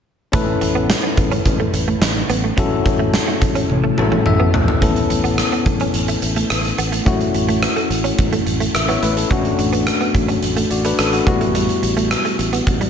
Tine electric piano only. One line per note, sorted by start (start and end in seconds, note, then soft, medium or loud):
0.32 2.53 C#4 medium
0.32 2.53 E4 medium
0.32 2.54 A4 medium
0.32 2.54 B4 medium
2.57 3.95 C#4 medium
2.57 3.95 E4 medium
2.57 3.95 F#4 medium
2.57 3.96 A4 medium
3.97 4.81 C#4 medium
3.97 4.82 E4 soft
3.97 4.82 F#4 soft
3.97 4.82 A4 medium
4.26 4.78 E5 medium
4.81 7.02 B3 medium
4.81 7.02 C#4 medium
4.81 7.03 E4 medium
4.81 7.03 A4 medium
7.05 9.26 A3 medium
7.05 8.71 C#4 medium
7.05 8.71 E4 medium
7.05 8.72 F#4 medium
8.75 8.88 E5 medium
8.88 9.02 E4 medium
8.88 9.02 C#5 medium
9.02 9.16 B4 medium
9.17 9.29 C#4 soft
9.17 9.43 A4 medium
9.30 10.68 A3 medium
9.30 10.68 C#4 medium
9.30 10.68 D4 medium
9.30 10.69 F#4 medium
10.71 10.85 F#4 soft
10.71 10.84 D5 medium
10.85 10.99 D4 medium
10.85 10.98 B4 medium
10.99 11.13 C#4 soft
10.99 11.12 A4 medium
11.13 11.40 A3 soft
11.13 11.27 F#4 medium
11.26 12.90 G3 medium
11.26 12.90 B3 medium
11.26 12.90 E4 medium
11.26 12.90 F#4 medium